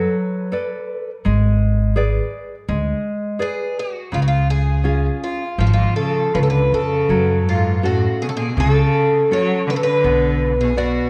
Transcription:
0.00 0.51 F#3 medium
0.00 0.14 A4 medium
0.52 1.10 A4 soft
0.52 1.10 B4 soft
0.52 1.10 D5 soft
1.25 2.19 G#1 medium
1.25 1.94 G#3 medium
1.96 2.54 G#4 medium
1.96 2.54 B4 soft
1.96 2.54 D5 medium
2.68 2.92 D2 medium
2.68 3.39 G#3 medium
3.39 3.98 G#4 medium
3.39 3.79 G#4 medium
3.39 3.98 B4 soft
3.39 3.98 D5 medium
3.79 4.14 F#4 medium
4.12 5.08 C#2 medium
4.12 4.83 C#3 medium
4.12 4.21 F4 medium
4.22 4.27 F#4 medium
4.28 4.50 F4 medium
4.50 5.23 G#4 medium
4.84 5.43 C#4 soft
4.84 5.44 F4 soft
4.84 5.44 G#4 medium
5.24 5.59 F4 medium
5.58 5.83 G#1 medium
5.58 5.66 G#2 medium
5.58 6.32 F3 medium
5.58 5.66 F4 medium
5.67 5.73 A2 medium
5.67 5.73 F#4 medium
5.73 5.95 G#2 medium
5.73 5.96 F4 medium
5.96 6.31 C#3 medium
5.96 6.34 A4 medium
6.34 6.69 C#2 medium
6.34 6.37 F3 medium
6.34 6.94 C#4 soft
6.34 6.95 F4 soft
6.34 6.38 B4 medium
6.41 6.47 C#3 medium
6.41 6.49 A4 medium
6.47 6.70 D3 medium
6.47 6.71 B4 medium
6.72 7.06 F2 medium
6.72 7.43 C#3 medium
6.72 7.50 A4 medium
7.09 8.05 F#2 medium
7.09 7.81 F#3 medium
7.47 7.81 G#2 medium
7.47 7.82 F4 medium
7.83 8.18 A2 medium
7.83 8.42 C#4 medium
7.83 8.42 F#4 soft
7.83 8.22 F#4 medium
7.83 8.43 A4 medium
8.22 8.27 B2 medium
8.22 8.28 G#4 medium
8.28 8.34 C#3 medium
8.28 8.35 A4 medium
8.36 8.56 B2 medium
8.36 8.59 G#4 medium
8.57 8.81 C#2 medium
8.57 9.29 C#3 medium
8.57 9.27 C#3 medium
8.57 9.28 A4 loud
9.31 9.65 F#3 medium
9.31 9.89 C#4 soft
9.31 9.90 F#4 soft
9.31 9.90 A4 medium
9.31 9.70 C#5 medium
9.67 9.73 D3 medium
9.67 9.75 B4 medium
9.73 9.80 C#3 medium
9.73 9.82 A4 medium
9.82 10.55 D3 medium
9.82 10.56 B4 medium
10.04 10.98 B1 medium
10.04 10.75 B3 medium
10.60 10.76 B2 medium
10.60 10.78 G#4 medium
10.76 11.10 B2 medium
10.76 11.10 F#4 soft
10.76 11.10 F#4 medium
10.76 11.10 B4 soft
10.76 11.10 D5 medium

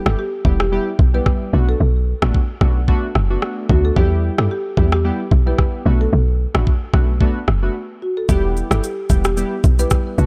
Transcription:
0.06 0.16 G1 medium
0.06 0.22 G3 medium
0.06 0.22 B3 medium
0.06 0.22 E4 medium
0.06 0.22 G4 medium
0.06 0.19 A4 medium
0.06 cross-stick loud
0.19 0.59 G4 medium
0.45 0.79 E1 medium
0.45 0.63 G3 medium
0.45 0.63 B3 medium
0.45 0.63 E4 medium
0.45 0.63 G4 medium
0.45 kick medium
0.60 1.16 G4 loud
0.60 cross-stick loud
0.72 0.90 G3 medium
0.72 0.90 B3 medium
0.72 0.90 E4 medium
0.72 0.90 G4 loud
0.99 1.21 B1 medium
0.99 kick medium
1.14 1.50 G3 medium
1.14 1.50 B3 medium
1.14 1.50 E4 medium
1.14 1.50 G4 medium
1.14 1.70 B4 loud
1.26 kick medium
1.26 cross-stick medium
1.53 1.75 B1 loud
1.53 1.78 A3 medium
1.53 1.78 B3 medium
1.53 1.78 D4 medium
1.53 1.78 F#4 medium
1.69 3.76 A4 loud
1.80 2.14 B1 medium
2.22 2.32 A1 medium
2.22 2.38 A3 medium
2.22 2.38 B3 medium
2.22 2.38 D4 medium
2.22 2.38 F#4 medium
2.22 cross-stick loud
2.34 kick medium
2.61 2.95 B1 medium
2.61 2.79 A3 medium
2.61 2.79 B3 medium
2.61 2.79 D4 medium
2.61 2.79 F#4 medium
2.61 kick medium
2.61 cross-stick medium
2.88 3.06 A3 medium
2.88 3.06 B3 medium
2.88 3.06 D4 medium
2.88 3.06 F#4 loud
2.88 kick medium
3.15 3.37 F#1 medium
3.15 cross-stick medium
3.30 3.66 A3 medium
3.30 3.67 B3 medium
3.30 3.67 D4 medium
3.30 3.67 F#4 medium
3.42 cross-stick medium
3.69 3.91 D2 loud
3.69 3.94 A3 medium
3.69 3.95 B3 medium
3.69 3.95 D4 medium
3.69 3.95 F#4 medium
3.69 3.85 F#4 medium
3.69 kick medium
3.85 3.97 A4 medium
3.96 4.30 E2 loud
3.96 4.35 G3 loud
3.96 4.35 B3 medium
3.96 4.35 E4 medium
3.96 4.35 G4 loud
3.96 4.36 G4 loud
3.96 kick loud
4.38 4.48 G2 medium
4.38 4.54 G3 medium
4.38 4.54 B3 medium
4.38 4.54 E4 medium
4.38 4.54 G4 medium
4.38 4.51 A4 medium
4.38 cross-stick loud
4.51 4.92 G4 loud
4.77 5.11 E2 medium
4.77 4.95 G3 medium
4.77 4.95 B3 medium
4.77 4.96 E4 medium
4.77 4.96 G4 medium
4.77 kick medium
4.92 5.48 G4 medium
4.92 cross-stick loud
5.04 5.22 G3 medium
5.04 5.22 B3 medium
5.04 5.23 E4 medium
5.04 5.23 G4 loud
5.31 5.53 B1 medium
5.31 kick medium
5.46 5.83 G3 medium
5.46 5.83 B3 medium
5.46 5.83 E4 medium
5.46 5.83 G4 medium
5.46 6.02 B4 loud
5.58 kick medium
5.58 cross-stick medium
5.85 6.07 B1 loud
5.85 6.11 A3 medium
5.85 6.11 B3 medium
5.85 6.11 D4 medium
5.85 6.11 F#4 medium
6.01 7.98 A4 loud
6.13 6.46 B1 loud
6.54 6.64 A1 medium
6.54 6.70 A3 medium
6.54 6.70 B3 medium
6.54 6.71 D4 medium
6.54 6.71 F#4 medium
6.54 cross-stick loud
6.67 kick medium
6.93 7.27 B1 medium
6.93 7.12 A3 medium
6.93 7.12 B3 medium
6.93 7.12 D4 medium
6.93 7.12 F#4 medium
6.93 kick medium
6.93 cross-stick medium
7.21 7.39 A3 medium
7.21 7.39 B3 medium
7.21 7.39 D4 medium
7.21 7.39 F#4 loud
7.21 kick medium
7.48 7.70 F#1 medium
7.48 cross-stick medium
7.62 7.75 A3 medium
7.62 7.75 B3 medium
7.62 7.75 D4 medium
7.62 7.75 F#4 medium
8.02 8.16 F#4 medium
8.17 8.30 A4 medium
8.29 8.63 E1 loud
8.29 8.67 G3 medium
8.29 8.67 B3 medium
8.29 8.67 E4 medium
8.29 8.67 G4 loud
8.29 8.72 G4 loud
8.29 kick loud
8.29 shaker medium
8.57 shaker medium
8.71 8.81 G1 loud
8.71 8.87 G3 medium
8.71 8.87 B3 medium
8.71 8.87 E4 medium
8.71 8.87 G4 medium
8.71 8.84 A4 medium
8.71 cross-stick loud
8.71 shaker medium
8.83 9.22 G4 medium
8.83 shaker medium
9.10 9.44 E1 medium
9.10 9.28 G3 medium
9.10 9.28 B3 medium
9.10 9.28 E4 medium
9.10 9.28 G4 medium
9.10 kick medium
9.10 shaker medium
9.24 9.81 G4 medium
9.24 cross-stick medium
9.24 shaker medium
9.37 9.55 G3 medium
9.37 9.55 B3 medium
9.37 9.55 E4 medium
9.37 9.55 G4 loud
9.37 shaker medium
9.64 9.86 B1 medium
9.64 kick medium
9.64 shaker soft
9.79 10.15 G3 medium
9.79 10.15 B3 medium
9.79 10.15 E4 medium
9.79 10.15 G4 medium
9.79 10.26 B4 loud
9.79 shaker medium
9.90 kick medium
9.90 cross-stick medium
9.90 shaker medium
10.18 10.26 B1 loud
10.18 10.26 A3 medium
10.18 10.26 B3 medium
10.18 10.26 D4 medium
10.18 10.26 F#4 medium
10.18 shaker soft

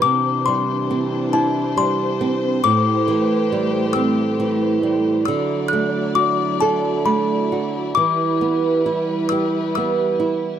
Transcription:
0.02 2.60 C3 medium
0.02 2.63 E3 medium
0.02 2.62 D4 medium
0.02 5.24 C5 medium
0.02 0.22 D6 medium
0.46 1.76 G3 soft
0.46 1.36 C6 medium
0.91 2.20 C4 medium
1.33 2.60 E4 medium
1.33 1.53 A5 medium
1.77 2.61 G3 medium
1.77 2.60 C6 medium
2.21 2.63 C4 medium
2.64 5.23 A2 medium
2.64 5.25 A3 medium
2.64 5.25 G4 medium
2.64 3.99 D6 loud
3.08 4.38 E3 medium
3.52 4.82 G3 medium
3.93 5.24 C4 medium
3.93 5.24 E6 loud
4.40 5.25 E3 medium
4.83 5.26 G3 soft
5.25 7.93 D3 medium
5.25 7.93 F#3 medium
5.25 10.59 E4 medium
5.25 7.93 D5 medium
5.25 5.72 E6 medium
5.68 6.16 F#6 medium
5.73 7.04 A3 medium
6.15 7.51 F#4 soft
6.15 6.36 D6 medium
6.60 7.92 A4 medium
6.60 6.81 A5 medium
7.05 7.93 A3 soft
7.05 7.99 B5 medium
7.52 7.95 F#4 soft
7.95 10.59 E3 medium
7.95 10.59 G3 medium
7.95 10.59 B4 medium
7.95 9.34 D6 medium
8.41 9.76 B3 medium
8.86 10.18 E4 soft
9.29 10.59 G4 medium
9.29 9.74 E6 medium
9.75 10.59 B3 soft
9.75 10.59 E6 medium
10.20 10.59 E4 soft

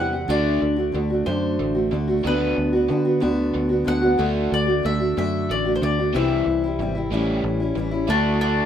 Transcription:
0.00 0.28 E2 medium
0.00 0.26 C3 medium
0.00 0.13 E3 medium
0.00 0.13 G3 medium
0.00 0.14 C4 medium
0.00 0.11 G4 medium
0.00 0.30 F#5 medium
0.13 0.29 G3 soft
0.13 0.29 C4 soft
0.13 0.29 G4 medium
0.28 0.60 D2 medium
0.28 0.77 D3 medium
0.28 0.78 A3 medium
0.28 0.77 D4 medium
0.28 0.75 F#4 medium
0.28 1.26 D5 medium
0.62 0.93 D2 medium
0.62 0.91 D3 medium
0.62 0.91 A3 medium
0.76 0.92 A3 soft
0.76 0.93 D4 soft
0.76 0.93 F#4 medium
0.92 1.26 D2 medium
0.92 1.10 D3 medium
0.92 1.10 A3 medium
0.92 1.11 D4 medium
0.92 1.09 F#4 medium
1.10 1.26 D4 soft
1.10 1.26 F#4 soft
1.14 1.26 A3 soft
1.26 1.58 F#2 medium
1.26 1.75 D3 medium
1.26 1.76 A3 medium
1.26 1.75 D4 medium
1.26 1.73 F#4 medium
1.26 1.87 C5 medium
1.59 1.91 A1 medium
1.59 1.89 D3 medium
1.59 1.89 A3 medium
1.75 1.91 A3 soft
1.75 1.92 D4 soft
1.75 1.91 F#4 soft
1.91 2.24 D2 medium
1.91 2.08 D3 medium
1.91 2.08 A3 medium
1.91 2.08 D4 medium
1.91 2.06 F#4 medium
2.08 2.25 A3 soft
2.08 2.25 D4 soft
2.08 2.24 F#4 medium
2.25 2.56 D2 medium
2.25 2.73 D3 medium
2.25 2.74 B3 medium
2.25 2.74 D4 medium
2.25 2.72 F#4 medium
2.25 3.93 B4 medium
2.56 2.89 D2 medium
2.56 2.86 D3 medium
2.56 2.86 B3 medium
2.73 2.88 B3 soft
2.73 2.89 D4 soft
2.73 2.89 F#4 medium
2.88 3.05 D3 medium
2.88 3.21 D3 medium
2.88 3.06 B3 medium
2.88 3.06 D4 medium
2.88 3.04 F#4 medium
3.05 3.20 B3 soft
3.05 3.20 D4 soft
3.05 3.21 F#4 medium
3.20 3.54 D2 medium
3.20 3.70 D3 medium
3.20 3.70 B3 medium
3.20 3.70 D4 medium
3.20 3.68 F#4 medium
3.54 3.86 D2 medium
3.54 3.83 D3 medium
3.54 3.83 B3 medium
3.69 3.85 B3 soft
3.69 3.86 D4 soft
3.69 3.86 F#4 soft
3.85 4.18 D2 medium
3.85 4.02 D3 medium
3.85 4.02 B3 medium
3.85 4.02 D4 medium
3.85 4.00 F#4 medium
3.85 4.54 F#5 loud
4.01 4.18 B3 soft
4.01 4.18 D4 soft
4.01 4.18 F#4 medium
4.18 4.50 D2 medium
4.18 4.67 D3 medium
4.18 4.68 A3 medium
4.18 4.67 D4 medium
4.18 4.65 F#4 medium
4.51 4.83 D2 medium
4.51 4.81 D3 medium
4.51 4.81 A3 medium
4.51 4.83 D5 medium
4.66 4.84 A3 soft
4.66 4.84 D4 soft
4.66 4.83 F#4 medium
4.83 5.16 D2 medium
4.83 5.00 D3 medium
4.83 5.01 A3 medium
4.83 5.00 D4 medium
4.83 4.98 F#4 medium
4.83 5.17 E5 medium
5.00 5.16 A3 soft
5.00 5.17 D4 soft
5.00 5.16 F#4 medium
5.17 5.48 F#2 medium
5.17 5.65 D3 medium
5.17 5.66 A3 medium
5.17 5.65 D4 medium
5.17 5.64 F#4 medium
5.17 5.51 E5 medium
5.49 5.81 A1 medium
5.49 5.78 D3 medium
5.49 5.79 A3 medium
5.49 5.75 D5 medium
5.65 5.82 A3 soft
5.65 5.82 D4 soft
5.65 5.81 F#4 medium
5.75 5.82 C5 medium
5.82 6.13 D2 medium
5.82 5.98 D3 medium
5.82 5.98 A3 medium
5.82 5.99 D4 medium
5.82 5.97 F#4 medium
5.82 6.15 D5 medium
5.99 6.15 A3 soft
5.99 6.15 D4 medium
5.99 6.14 F#4 medium
6.14 6.46 C2 medium
6.14 6.63 C3 medium
6.14 6.63 E3 medium
6.14 6.63 G3 medium
6.14 6.64 C4 medium
6.14 6.63 E4 medium
6.14 7.41 E5 medium
6.46 6.78 C2 medium
6.46 6.75 C3 medium
6.46 6.75 E3 medium
6.64 6.80 G3 soft
6.64 6.80 C4 soft
6.64 6.79 E4 medium
6.79 7.10 G#1 medium
6.79 7.08 C3 medium
6.79 6.95 E3 medium
6.79 6.96 G3 medium
6.79 6.96 C4 medium
6.79 6.94 E4 medium
6.95 7.12 G3 soft
6.95 7.12 C4 soft
6.95 7.11 E4 medium
7.12 7.43 A1 medium
7.12 7.60 A2 medium
7.12 7.61 E3 medium
7.12 7.61 G3 medium
7.12 7.61 C#4 medium
7.12 7.59 E4 medium
7.44 7.75 A1 medium
7.44 7.73 A2 medium
7.44 7.73 E3 medium
7.60 7.76 G3 soft
7.60 7.76 C#4 soft
7.60 7.76 E4 medium
7.75 8.07 A1 medium
7.75 8.05 A2 medium
7.75 7.92 E3 medium
7.75 7.93 G3 medium
7.75 7.92 C#4 medium
7.75 7.90 E4 medium
7.91 8.08 G3 soft
7.91 8.09 C#4 medium
7.91 8.08 E4 medium
8.08 8.61 D2 medium
8.08 8.66 D3 medium
8.08 8.66 A3 medium
8.08 8.42 D4 medium
8.08 8.39 D4 medium
8.08 8.66 F#4 medium
8.41 8.66 A3 medium
8.41 8.66 D4 medium
8.41 8.66 F#4 medium

